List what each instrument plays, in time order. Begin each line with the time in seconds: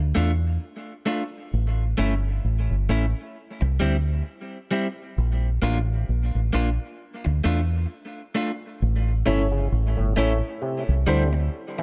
Already playing: fingered electric bass D2
0.15 fingered electric bass E2, clean electric guitar A3 D4 F4
1.06 clean electric guitar A3 D4 F4
1.53 fingered electric bass A1
1.98 fingered electric bass G1, clean electric guitar A3 C#4 E4
2.44 fingered electric bass A1
2.71 fingered electric bass G1
2.89 fingered electric bass A1, clean electric guitar A3 C#4 E4
3.61 fingered electric bass C2, muted clean electric guitar stroke
3.80 fingered electric bass D2, clean electric guitar G3 C4 E4
4.71 clean electric guitar G3 C4 E4
5.18 fingered electric bass A#1
5.62 fingered electric bass A1, clean electric guitar A#3 D4 F4
6.09 fingered electric bass A#1
6.35 fingered electric bass A1
6.53 fingered electric bass A#1, clean electric guitar A#3 D4 F4
7.25 fingered electric bass D2, muted clean electric guitar stroke
7.44 fingered electric bass E2, clean electric guitar A3 D4 F4
8.35 clean electric guitar A3 D4 F4
8.82 fingered electric bass A1
9.26 fingered electric bass G1, clav A2, clean electric guitar A3 C#4 E4, upright piano C#4 E4 A4 C#5
9.52 clav C#3
9.72 fingered electric bass A1
9.97 fingered electric bass G1, clav A2
10.16 fingered electric bass A1, clav A2, clean electric guitar A3 C#4 E4, upright piano C#4 E4 A4 C#5
10.62 clav C3
10.89 fingered electric bass C2
11.07 fingered electric bass D2, clav D3, clean electric guitar G3 C4 E4, upright piano C4 E4 G4 C5
11.33 muted clean electric guitar stroke
11.78 clav E3, muted clean electric guitar stroke